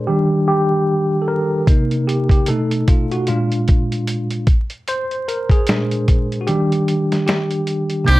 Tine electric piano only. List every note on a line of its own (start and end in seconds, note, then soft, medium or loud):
0.07 1.24 D#3 medium
0.07 1.24 G3 soft
0.07 1.24 D4 medium
0.07 0.46 G4 medium
0.48 1.24 G4 medium
1.22 1.27 A4 medium
1.28 2.10 A#4 medium
1.69 2.44 C3 medium
1.69 2.44 A#3 medium
1.69 2.45 D#4 medium
2.07 2.30 G4 medium
2.31 2.46 G4 medium
2.48 3.24 B2 medium
2.48 3.24 A3 soft
2.48 3.25 D#4 medium
2.48 2.89 A4 medium
2.88 3.09 F4 medium
3.12 3.28 F#4 medium
3.28 4.44 A#2 medium
3.28 4.44 G#3 soft
3.28 4.44 D4 medium
3.28 4.44 F4 medium
4.89 5.25 C5 loud
5.28 5.49 A#4 medium
5.51 6.44 G#4 medium
5.68 6.23 A#2 medium
5.68 6.24 G#3 medium
5.68 6.24 D4 medium
6.41 6.47 F#4 medium
6.47 8.04 D#3 medium
6.47 8.04 G3 soft
6.47 8.04 D4 medium
6.47 7.25 G4 medium
7.27 7.86 G4 medium
8.05 8.20 C3 medium
8.05 8.20 A#3 medium
8.05 8.20 D4 medium
8.09 8.20 D#4 medium
8.09 8.20 C5 medium